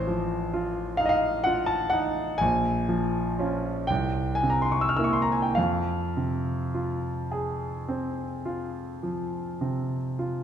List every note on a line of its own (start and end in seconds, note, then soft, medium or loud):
0.00 2.37 A1 medium
0.00 0.99 C5 medium
0.07 0.81 F3 soft
0.53 1.28 F4 medium
0.97 1.74 D#4 medium
0.97 1.05 F5 medium
1.06 1.12 D#5 medium
1.06 1.44 F5 medium
1.44 2.21 F4 medium
1.44 1.68 F#5 medium
1.66 1.91 A5 medium
1.90 2.40 D#4 soft
1.90 2.39 F#5 medium
2.38 3.86 A#1 medium
2.38 3.89 G#5 medium
2.89 3.69 F3 medium
3.39 3.86 C#4 soft
3.39 3.86 F4 soft
3.87 5.53 C2 medium
3.87 4.36 G5 medium
4.35 4.51 G#5 medium
4.43 5.33 C3 soft
4.50 4.63 A#5 medium
4.62 4.73 C6 medium
4.72 4.82 C#6 medium
4.81 4.90 E6 medium
4.89 4.98 F6 medium
4.97 5.53 A#3 soft
4.97 5.53 E4 soft
4.97 5.05 E6 medium
5.04 5.14 C#6 medium
5.13 5.23 C6 medium
5.22 5.33 A#5 medium
5.32 5.44 G#5 medium
5.42 5.55 G5 soft
5.55 8.99 F2 medium
5.55 10.43 F5 medium
6.17 7.08 C3 soft
6.74 7.66 F4 soft
7.32 8.23 G#4 soft
7.89 8.80 C4 soft
8.46 9.38 F4 soft
9.03 9.95 F3 soft
9.61 10.43 C3 soft
10.19 10.43 F4 soft